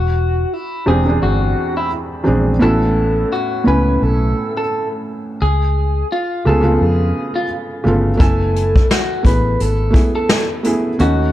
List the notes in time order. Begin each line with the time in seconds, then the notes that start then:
Already playing: E1 F#4
0.53 E4
0.86 E1 E2 G#3 C4 D4 G4 G#4
1.06 E2 G#3 C4 D4 G#4
1.23 G1 F#4
1.77 E4
2.24 A#1 E2 G#3 C4 D4 G#4
2.59 A1 A2 B3 C#4 E4 F#4 A4
3.33 F#4
3.64 C#2 A2 B3 C#4 E4 B4 G#5
4.02 B1 A4
4.57 A4
5.42 C#2 G#4
6.12 F4
6.45 C#2 C#3 A3 B3 F4 G#4 A4
6.61 C#3 A3 B3 F4 G#4
6.81 F2 G#4
7.36 F4
7.84 G1 C#3 A3 B3 F4 A4
8.17 F#1 A3 B3 E4 A4 G#5, kick, closed hi-hat
8.56 closed hi-hat
8.76 kick
8.91 F#4, snare, closed hi-hat
9.23 A1 A3 B3 E4 G#4 B4, kick, closed hi-hat
9.60 G#1 A4, closed hi-hat
9.90 A3 B3 E4 G#4, kick
9.95 closed hi-hat
10.16 A4
10.29 snare, closed hi-hat
10.63 A3 B3 E4 G#4, closed hi-hat
10.99 D#2 A3 C#4 D#4 F#4, closed hi-hat